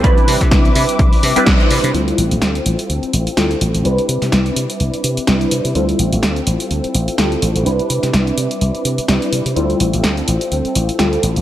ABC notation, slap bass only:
X:1
M:4/4
L:1/16
Q:"Swing 16ths" 1/4=126
K:Ddor
V:1 name="Slap bass" clef=bass
C,, z C, C, C,, z C, z C,, z C, z C,, z C, C, | D,, z A,,, A,,, D,, z A,,, z D,, z A,,, z D,, z A,,, A,,, | C,, z C, C, C,, z C, z C,, z C, z C,, z C, C, | D,, z A,,, A,,, D,, z A,,, z D,, z A,,, z D,, z A,,, A,,, |
C,, z C, C, C,, z C, z C,, z C, z C,, z C, C, | D,, z A,,, A,,, D,, z A,,, z D,, z A,,, z D,, z A,,, A,,, |]